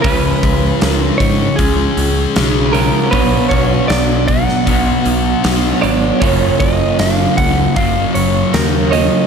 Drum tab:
HH |o-o-o-o-o-o-o-o-|o-o-o-o-o-o-o-o-|o-o-o-o-o-o-o-o-|
SD |----o-------o---|----o--o----o---|----o-------o---|
BD |o-o---o-o-------|o-o---o-o-------|o-o---o-o-------|